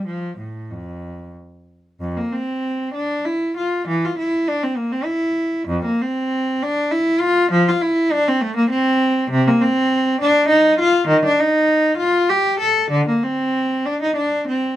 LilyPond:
\new Staff \with { instrumentName = "Cello" } { \time 3/4 \key f \major \tempo 4 = 99 f8 a,8 f,4 r4 | f,16 bes16 c'4 d'8 e'8 f'8 | e16 f'16 e'8 d'16 c'16 bes16 c'16 e'4 | f,16 bes16 c'4 d'8 e'8 f'8 |
f16 f'16 e'8 d'16 c'16 a16 bes16 c'4 | \key c \dorian c16 bes16 c'4 d'8 ees'8 f'8 | ees16 d'16 ees'4 f'8 g'8 a'8 | d16 bes16 c'4 d'16 ees'16 d'8 c'8 | }